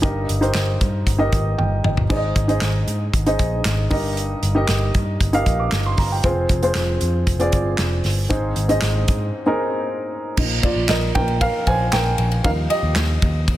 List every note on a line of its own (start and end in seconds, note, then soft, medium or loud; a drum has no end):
0.02 0.76 G2 medium
0.02 0.39 D#4 medium
0.02 0.39 G4 medium
0.02 0.39 A#4 medium
0.02 0.40 D#5 medium
0.02 kick loud
0.02 closed hi-hat medium
0.29 0.51 G1 medium
0.29 closed hi-hat medium
0.41 1.14 D#4 medium
0.41 1.14 G4 medium
0.41 1.15 A#4 medium
0.41 1.15 C5 medium
0.41 closed hi-hat soft
0.54 0.76 G1 medium
0.54 snare loud
0.54 clap medium
0.54 closed hi-hat medium
0.81 1.02 G2 medium
0.81 kick medium
0.81 closed hi-hat medium
1.06 1.28 G1 medium
1.06 kick medium
1.06 closed hi-hat medium
1.18 2.04 D#4 medium
1.18 2.04 G4 medium
1.18 2.04 A#4 medium
1.18 1.83 D#5 medium
1.32 1.54 G#1 medium
1.32 kick medium
1.32 closed hi-hat medium
1.58 1.80 G1 medium
1.58 1.82 G5 medium
1.58 high tom medium
1.84 2.06 G1 medium
1.84 2.08 D#5 medium
1.84 mid tom medium
1.97 floor tom medium
2.10 2.84 G#2 medium
2.10 2.46 D#4 medium
2.10 2.46 G#4 medium
2.10 2.47 C5 medium
2.10 2.17 D5 medium
2.10 kick loud
2.10 splash medium
2.17 2.48 D#5 medium
2.36 2.57 G#1 medium
2.36 kick medium
2.36 closed hi-hat medium
2.48 3.21 D#4 medium
2.48 3.21 G#4 medium
2.48 3.22 C5 medium
2.48 3.22 D#5 medium
2.48 closed hi-hat soft
2.61 2.83 G#1 medium
2.61 snare medium
2.61 clap medium
2.61 closed hi-hat medium
2.87 3.09 G#2 medium
2.87 closed hi-hat medium
3.13 3.35 G#1 loud
3.13 kick medium
3.13 closed hi-hat medium
3.26 3.89 D#4 medium
3.26 3.91 G#4 medium
3.26 3.91 C5 medium
3.26 3.91 D#5 medium
3.26 closed hi-hat soft
3.39 3.61 A#1 medium
3.39 kick medium
3.39 closed hi-hat medium
3.65 3.86 G#1 medium
3.65 snare loud
3.65 clap medium
3.65 closed hi-hat medium
3.90 4.65 G2 medium
3.90 4.51 D#4 medium
3.90 4.52 G4 medium
3.90 4.52 A#4 medium
3.90 4.52 D#5 loud
3.90 kick loud
3.90 open hi-hat medium
4.17 closed hi-hat medium
4.43 4.64 G1 medium
4.43 closed hi-hat medium
4.55 5.28 D#4 medium
4.55 5.28 G4 medium
4.55 5.28 A#4 medium
4.55 5.29 D#5 medium
4.68 4.90 G1 loud
4.68 snare loud
4.68 clap medium
4.68 closed hi-hat medium
4.94 5.16 G2 medium
4.94 kick medium
4.94 closed hi-hat medium
5.21 5.42 G1 medium
5.21 kick medium
5.21 closed hi-hat medium
5.33 6.18 D#4 medium
5.33 6.18 G4 medium
5.33 6.18 A#4 medium
5.33 6.19 F5 loud
5.33 closed hi-hat soft
5.46 5.68 A#1 medium
5.46 kick medium
5.46 closed hi-hat medium
5.60 5.84 D6 medium
5.72 5.94 G1 medium
5.72 snare loud
5.72 clap medium
5.72 closed hi-hat medium
5.86 5.98 C6 medium
5.97 6.19 G1 medium
5.97 6.11 A#5 medium
5.97 kick medium
5.97 snare soft
5.97 open hi-hat medium
6.12 6.36 G5 medium
6.24 6.45 F1 loud
6.24 6.60 C4 medium
6.24 6.60 F4 medium
6.24 6.61 G#4 medium
6.24 6.61 C5 medium
6.24 kick loud
6.24 closed hi-hat medium
6.49 6.71 F1 medium
6.49 kick loud
6.49 closed hi-hat medium
6.63 7.35 C4 medium
6.63 7.35 F4 medium
6.63 7.36 G#4 medium
6.63 7.36 C5 medium
6.63 closed hi-hat soft
6.75 6.97 F1 loud
6.75 snare medium
6.75 clap medium
6.75 closed hi-hat medium
7.01 7.23 F2 loud
7.01 closed hi-hat medium
7.27 7.48 F1 loud
7.27 kick medium
7.27 closed hi-hat medium
7.39 8.25 C4 medium
7.39 8.25 F4 medium
7.39 8.25 G#4 medium
7.39 8.25 D5 medium
7.39 closed hi-hat soft
7.52 7.74 G1 medium
7.52 kick medium
7.52 closed hi-hat medium
7.78 8.00 F1 loud
7.78 snare loud
7.78 clap medium
7.78 closed hi-hat medium
8.04 8.26 G1 medium
8.04 snare soft
8.04 open hi-hat medium
8.29 8.52 G#1 loud
8.29 9.04 G#2 medium
8.29 8.66 C4 medium
8.29 8.67 D#4 medium
8.29 8.67 G#4 medium
8.29 8.67 C5 medium
8.29 kick loud
8.29 closed hi-hat medium
8.56 8.78 G#1 medium
8.56 closed hi-hat medium
8.69 9.42 C4 medium
8.69 9.42 D#4 medium
8.69 9.42 G#4 medium
8.69 9.42 D#5 loud
8.69 closed hi-hat soft
8.81 9.03 G#1 loud
8.81 snare loud
8.81 clap medium
8.81 closed hi-hat medium
9.08 9.30 G#2 medium
9.08 kick medium
9.08 closed hi-hat medium
9.46 10.31 C4 medium
9.46 10.32 D#4 medium
9.46 10.32 G#4 medium
9.46 10.32 A#4 loud
10.37 10.59 A#1 loud
10.37 11.11 F3 medium
10.37 11.11 A#3 soft
10.37 11.12 D#4 medium
10.37 kick loud
10.37 crash medium
10.63 10.88 F4 medium
10.63 10.87 D5 medium
10.63 kick medium
10.63 ride medium
10.76 10.87 A#1 medium
10.89 11.10 A#1 loud
10.89 11.14 A#4 medium
10.89 11.13 D#5 medium
10.89 snare loud
10.89 clap medium
10.89 ride medium
11.15 11.47 A#1 medium
11.15 11.38 F3 soft
11.15 11.39 A#3 soft
11.15 11.39 D#4 medium
11.15 11.40 A#4 medium
11.15 11.42 G5 loud
11.15 kick medium
11.15 ride medium
11.28 ride soft
11.41 11.66 A#4 medium
11.41 11.68 F5 loud
11.41 kick medium
11.41 ride medium
11.67 11.88 A#1 loud
11.67 11.91 C5 medium
11.67 11.94 G#5 loud
11.67 kick medium
11.67 ride medium
11.93 12.14 A#1 loud
11.93 12.41 A#4 medium
11.93 12.41 G5 loud
11.93 snare loud
11.93 clap medium
11.93 ride medium
12.18 12.40 A#1 medium
12.18 ride medium
12.32 ride soft
12.44 12.66 D#2 loud
12.44 13.18 F3 medium
12.44 13.18 G3 soft
12.44 13.18 D#4 medium
12.44 12.51 A#4 medium
12.44 12.50 F5 medium
12.44 kick loud
12.44 ride medium
12.70 13.57 G4 medium
12.70 13.57 D#5 loud
12.70 ride medium
12.83 12.93 D#2 medium
12.95 13.17 D#2 medium
12.95 snare loud
12.95 clap medium
12.95 ride medium
13.22 13.54 D#2 medium
13.22 kick medium
13.22 ride soft
13.48 kick medium
13.48 ride medium